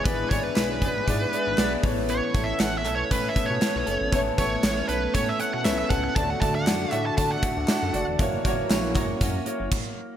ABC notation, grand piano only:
X:1
M:4/4
L:1/8
Q:"Swing 16ths" 1/4=118
K:A
V:1 name="Grand piano"
[B,EGd] [B,EGd] [B,EGc] [B,EGd] [B,EGd] [B,EGd] [B,EGd] [B,EAc]- | [B,EAc] [B,EAc] [B,EAc] [B,EAc] [B,EAc] [B,EAc] [B,EAc] [B,EAc] | [B,EAc] [B,EAc] [B,EAc] [B,EAc] [B,EAc] [B,EAc] [B,EAc] [B,EAc] | [A,DFd] [A,DFd] [A,DFd] [A,DFd] [A,DFd] [A,DFd] [A,DFd] [A,DFd] |
[^A,EFc] [A,EFc] [A,EFc] [A,EFc] [A,EFc] [A,EFc] z2 |]
V:2 name="Grand piano" clef=bass
G,,3 z4 A,,- | A,,2 z4 z A,,- | A,,2 z6 | D,3 z4 z |
z8 |]